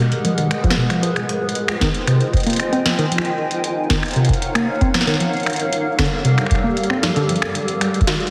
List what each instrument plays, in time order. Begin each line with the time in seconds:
Already playing: ambient pad G#3 G#4 A#4 B4 F#5
0.00 tine electric piano B2
0.12 closed hi-hat
0.25 tine electric piano F3, closed hi-hat
0.38 tine electric piano D#3, closed hi-hat
0.51 finger snap, closed hi-hat
0.64 tine electric piano F3, kick, closed hi-hat
0.70 snare
0.77 tine electric piano B2
0.90 tine electric piano F3, finger snap, closed hi-hat
1.03 tine electric piano F3, ambient pad F4, closed hi-hat
1.16 finger snap, closed hi-hat
1.21 ambient pad C5
1.29 closed hi-hat
1.45 ambient pad G5, closed hi-hat
1.49 ambient pad D#5
1.55 closed hi-hat
1.68 finger snap, closed hi-hat
1.81 tine electric piano D#3, kick, snare, closed hi-hat
1.94 ambient pad G#5, closed hi-hat
2.07 tine electric piano C3, finger snap, closed hi-hat
2.21 closed hi-hat
2.33 kick, closed hi-hat
2.37 closed hi-hat
2.40 closed hi-hat
2.43 tine electric piano A#3, closed hi-hat
2.47 closed hi-hat
2.50 closed hi-hat
2.53 closed hi-hat
2.56 finger snap, closed hi-hat
2.60 closed hi-hat
2.73 tine electric piano C4, closed hi-hat
2.86 tine electric piano F3, snare, closed hi-hat
2.99 tine electric piano D#3, closed hi-hat
3.12 tine electric piano F3, ambient pad D#4, closed hi-hat
3.17 ambient pad A#4, finger snap
3.24 ambient pad F5, closed hi-hat
3.51 ambient pad F#5, closed hi-hat
3.58 ambient pad C#5
3.64 closed hi-hat
3.90 tine electric piano D#3, kick, snare, closed hi-hat
4.03 finger snap, closed hi-hat
4.06 closed hi-hat
4.08 closed hi-hat
4.11 closed hi-hat
4.13 closed hi-hat
4.16 tine electric piano C3, closed hi-hat
4.25 closed hi-hat
4.29 kick, closed hi-hat
4.33 closed hi-hat
4.42 closed hi-hat
4.55 tine electric piano A#3, finger snap, closed hi-hat
4.81 tine electric piano C4, kick, closed hi-hat
4.94 tine electric piano F3, finger snap, snare, closed hi-hat
5.01 snare
5.07 tine electric piano D#3, snare, closed hi-hat
5.14 snare
5.20 tine electric piano F3, ambient pad G3, closed hi-hat
5.32 ambient pad G4 A4, closed hi-hat
5.37 closed hi-hat
5.40 closed hi-hat
5.43 finger snap, closed hi-hat
5.46 closed hi-hat
5.50 closed hi-hat
5.53 closed hi-hat
5.56 closed hi-hat
5.60 closed hi-hat
5.73 closed hi-hat
5.99 tine electric piano D3, finger snap, kick, snare, closed hi-hat
6.05 closed hi-hat
6.25 tine electric piano C3, closed hi-hat
6.38 finger snap, closed hi-hat
6.46 finger snap
6.51 kick, closed hi-hat
6.55 finger snap
6.64 tine electric piano A#3
6.77 closed hi-hat
6.83 closed hi-hat
6.90 tine electric piano C4, finger snap
7.03 tine electric piano F3, snare, closed hi-hat
7.16 tine electric piano D3, closed hi-hat
7.29 tine electric piano F3, ambient pad G#3, closed hi-hat
7.36 ambient pad G#4, closed hi-hat
7.42 finger snap
7.55 closed hi-hat
7.68 ambient pad B4, closed hi-hat
7.76 ambient pad F#5
7.81 finger snap, closed hi-hat
7.94 closed hi-hat
8.01 kick, closed hi-hat
8.07 tine electric piano D#3, snare, closed hi-hat
8.14 closed hi-hat
8.20 closed hi-hat
8.27 closed hi-hat